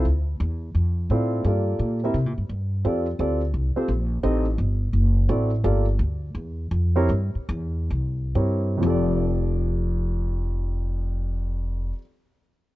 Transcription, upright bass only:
X:1
M:4/4
L:1/8
Q:"Swing" 1/4=172
K:F
V:1 name="Upright bass" clef=bass
D,,2 E,,2 F,,2 A,,2 | G,,2 B,,2 (3C, B,, G,, G,,2 | F,,2 D,,2 C,, z B,,,2 | A,,,2 G,,,2 ^F,,,2 A,,,2 |
G,,,2 D,,2 E,,2 F,,2 | G,, z E,,2 C,,2 G,,2 | F,,,8- | F,,,8 |]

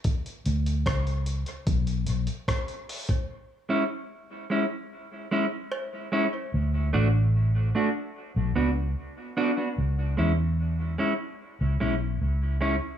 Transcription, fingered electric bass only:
X:1
M:4/4
L:1/16
Q:1/4=74
K:C#phr
V:1 name="Fingered electric bass" clef=bass
z2 D,,2 C,,3 z B,,,2 B,,, z4 z | z16 | D,,2 A,,,4 z3 B,,, C,,2 z4 | C,,2 E,,4 z3 C,, B,,,2 C,,3 z |]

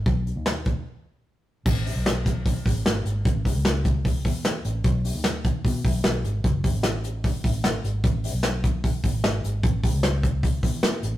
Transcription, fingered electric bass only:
X:1
M:4/4
L:1/16
Q:1/4=150
K:Alyd
V:1 name="Fingered electric bass" clef=bass
B,,,3 D,,4- D,, z8 | A,,,3 B,,,6- B,,, A,,,2 G,,,2 G,,,2 | A,,,3 C,,6- C,, E,,4 A,,,2 | B,,,3 D,,4- D,, B,,2 B,,,2 B,,,2 G,,,2 |
F,,,3 A,,,6- A,,, A,,,4 G,,,2 | A,,,3 B,,,6- B,,, A,,,2 G,,,2 G,,,2 | A,,,3 C,,6- C,, E,,4 A,,,2 |]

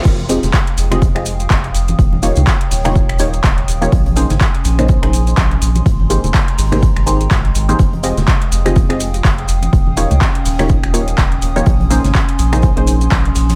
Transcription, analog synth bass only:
X:1
M:4/4
L:1/16
Q:"Swing 16ths" 1/4=124
K:Fm
V:1 name="Analog synth bass" clef=bass
F,,,3 E,,, z2 F,,,3 F,,,3 F,,,2 F,,,2 | E,,,3 D,, z2 E,,,3 E,,,3 E,,,2 E,,,2 | B,,,3 A,,, z2 B,,,3 B,,,3 B,,,2 B,,,2 | A,,,3 E,,, z2 A,,,3 A,,,3 A,,,2 A,,,2 |
F,,,3 E,,, z2 F,,,3 F,,,3 F,,,2 F,,,2 | E,,,3 D,, z2 E,,,3 E,,,3 E,,,2 E,,,2 | B,,,3 A,,, z2 B,,,3 B,,,3 B,,,2 B,,,2 |]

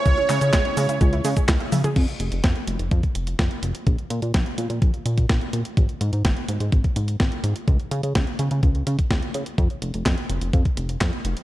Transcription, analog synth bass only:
X:1
M:4/4
L:1/16
Q:1/4=126
K:Dblyd
V:1 name="Analog synth bass" clef=bass
D,, z D, D, D,, z D, D, D,,2 D, z D,, z D, z | F,, z F,,, F,,, F,, z F,,, F,,, F,, z F,,,2 F,, z F,,, z | B,,, z B,, B,, B,,, z B,, B,, B,,, z B,,2 B,,, z B,, z | A,,, z A,, A,, A,,, z A,, A,, A,,, z A,,2 A,,, z A,, z |
D,, z D, D, D,, z D, D, D,,2 D, z D,, z D, z | F,, z F,,, F,,, F,, z F,,, F,,, F,, z F,,,2 F,, z F,,, z |]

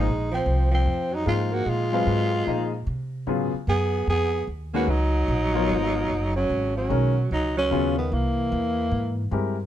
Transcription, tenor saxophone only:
X:1
M:4/4
L:1/8
Q:"Swing" 1/4=149
K:Dbmix
V:1 name="Tenor saxophone"
E =C2 C2 E F G | F6 z2 | z2 A2 A2 z G | E6- E D- |
D D3 E D2 C | B,6 z2 |]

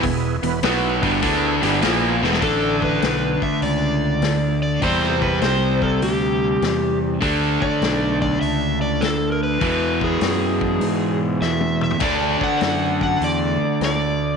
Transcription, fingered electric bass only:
X:1
M:4/4
L:1/8
Q:"Swing" 1/4=100
K:Dlyd
V:1 name="Fingered electric bass" clef=bass
E,,, E,,, B,,, =G,,, D,, G,,, ^A,,, E,,, | A,,,2 B,,, z C,,2 D,,2 | E,,2 =C,,2 D,,2 E,,2 | D,, z B,,,2 C,,2 D,,2 |
E,,2 F,,2 G,,2 E,,2 | D,, z F,,2 E,, z D,,2 |]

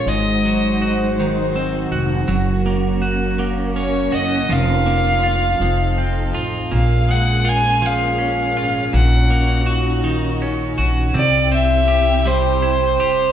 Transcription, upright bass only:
X:1
M:6/8
L:1/8
Q:3/8=54
K:Bbm
V:1 name="Upright bass" clef=bass
A,,,4- A,,, F,,, | G,,,4- G,,, G,,, | F,,,3 F,,,2 =A,,, | B,,,4- B,,, A,,, |
B,,,4- B,,, B,,, | C,,4- C,, G,,, |]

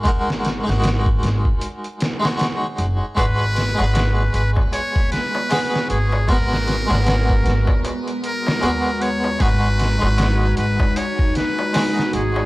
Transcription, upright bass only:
X:1
M:4/4
L:1/16
Q:"Swing 16ths" 1/4=77
K:G#m
V:1 name="Upright bass" clef=bass
G,,,3 G,,,3 G,,, z6 z F,,, z | G,,,3 G,,,3 G,,, z6 z G,,,2- | G,,,3 G,,,3 G,,, z4 z D,,4 | G,,,3 G,,,3 G,,, z6 z G,,,2 |]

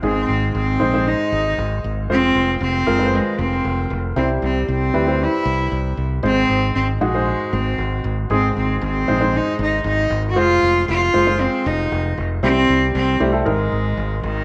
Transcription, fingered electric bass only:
X:1
M:4/4
L:1/16
Q:1/4=116
K:Ab
V:1 name="Fingered electric bass" clef=bass
A,,,2 A,,,2 A,,,2 B,,,3 z A,,,2 A,,,2 A,,,2 | F,,,2 F,,,2 F,,,2 _G,,,3 z F,,,2 F,,,2 F,,,2 | C,,2 C,,2 C,,2 =D,,3 z C,,2 C,,2 C,,2 | A,,,2 A,,,2 A,,,2 B,,,3 z A,,,2 A,,,2 A,,,2 |
A,,,2 A,,,2 A,,,2 B,,,3 z A,,,2 A,,,2 A,,,2 | F,,,2 F,,,2 F,,,2 _G,,,3 z F,,,2 F,,,2 F,,,2 | C,,2 C,,2 C,,2 C,,2 A,,,2 A,,,2 A,,,2 A,,,2 |]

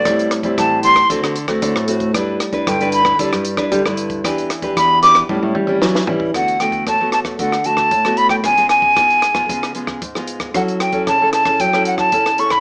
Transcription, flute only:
X:1
M:4/4
L:1/16
Q:1/4=114
K:D
V:1 name="Flute"
d2 z2 a2 =c'2 z8 | z4 g2 b2 z8 | z4 b2 d'2 z8 | f2 g2 a2 a2 f2 a4 b g |
^g2 g8 z6 | f2 g2 a2 a2 g2 f a3 c' b |]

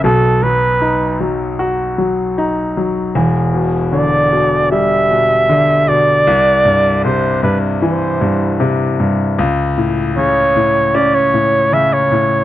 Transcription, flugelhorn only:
X:1
M:4/4
L:1/16
Q:1/4=77
K:Em
V:1 name="Flugelhorn"
A2 B4 z8 z2 | z4 d4 e6 d2- | d4 c2 B2 c4 z4 | z4 ^c4 d c3 e c3 |]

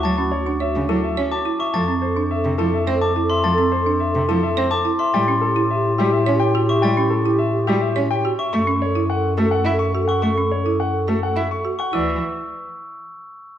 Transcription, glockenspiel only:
X:1
M:3/4
L:1/16
Q:1/4=106
K:D
V:1 name="Glockenspiel"
a' z8 d' z c' | a' z8 d' z =c' | a' z8 d' z =c' | a' z8 z2 c' |
a' z8 z2 c' | c' z8 z2 c' | c' z8 z2 c' | e'2 z8 z2 |]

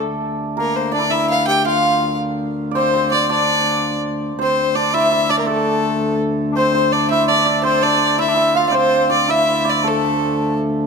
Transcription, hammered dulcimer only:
X:1
M:6/8
L:1/16
Q:3/8=110
K:Dm
V:1 name="Hammered dulcimer"
z6 B4 d2 | e6 f6 | z4 z3/2 d/2 c2 c2 d2 | d8 z4 |
c4 d2 e2 e2 d2 | A8 z4 | c2 c2 d2 e2 d2 d2 | c2 d4 e2 e2 f2 |
c4 d2 e4 d2 | A8 z4 |]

